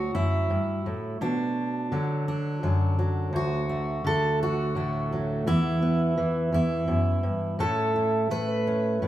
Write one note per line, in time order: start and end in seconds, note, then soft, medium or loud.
0.00 0.14 D2 medium
0.00 1.91 F#3 soft
0.00 0.14 F#4 medium
0.14 0.50 F#2 medium
0.14 1.21 E4 medium
0.50 0.85 G2 medium
0.86 1.21 A2 medium
1.21 1.92 B2 medium
1.21 2.27 D4 medium
1.92 4.03 D3 medium
1.92 2.62 F#3 soft
2.28 3.34 D4 medium
2.63 3.29 F#2 medium
2.63 2.97 F#3 medium
2.99 5.11 F#3 soft
3.33 5.46 D2 medium
3.33 4.06 F#4 medium
3.69 4.75 A3 soft
4.04 5.46 D3 medium
4.04 4.41 A4 medium
4.43 5.47 F#4 medium
4.75 5.46 A2 medium
4.75 5.47 A3 soft
5.12 5.47 F#3 soft
5.47 6.51 E2 medium
5.47 6.17 E3 soft
5.47 5.81 B3 soft
5.47 6.53 E4 medium
5.82 7.55 B3 soft
6.18 7.59 E3 medium
6.52 6.87 E2 medium
6.52 7.60 E4 medium
6.88 7.23 F#2 medium
7.23 7.59 G2 medium
7.59 9.01 A2 medium
7.59 8.30 A3 soft
7.59 8.67 C#4 soft
7.59 7.95 E4 soft
7.59 8.30 A4 medium
7.96 9.02 E4 soft
8.31 9.08 A3 medium
8.31 9.08 B4 medium
8.67 9.08 C#4 soft
9.02 9.08 A2 medium
9.02 9.08 E4 soft